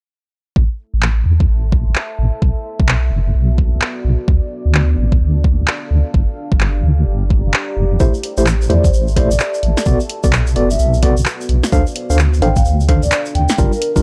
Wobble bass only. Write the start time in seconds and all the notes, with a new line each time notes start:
0.56 A1
0.94 A1
1.26 E2
1.49 A1
1.87 A1
2.19 A1
2.42 B1
2.80 B1
3.12 F#1
3.35 B1
3.72 B1
4.05 B1
4.28 D2
4.66 D2
4.98 A1
5.21 D2
5.59 D2
5.91 D2
6.14 G1
6.52 G1
6.84 D2
7.07 G1
7.45 G1
7.77 F1
8.00 A1
8.38 A1
8.70 E2
8.93 A1
9.31 A1
9.63 A1
9.86 B1
10.24 B1
10.56 F#1
10.79 B1
11.17 B1
11.49 B1
11.72 D2
12.10 D2
12.42 A1
12.65 D2
13.03 D2
13.35 D2
13.58 G1
13.96 G1